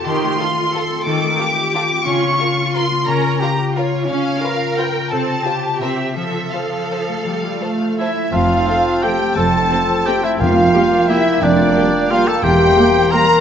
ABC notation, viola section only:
X:1
M:3/4
L:1/8
Q:1/4=174
K:F
V:1 name="Viola section"
_E,2 z4 | _E,2 z4 | _D2 z4 | _D2 z4 |
_D2 z4 | C2 z2 C2 | F,2 F,4 | G,2 A,4 |
z2 [CA]2 [CA]2 | z2 [CA]2 [CA]2 | z2 [B,G]2 [B,G]2 | z2 [B,G]2 [B,G]2 |
z2 [B,G]2 [B,G]2 |]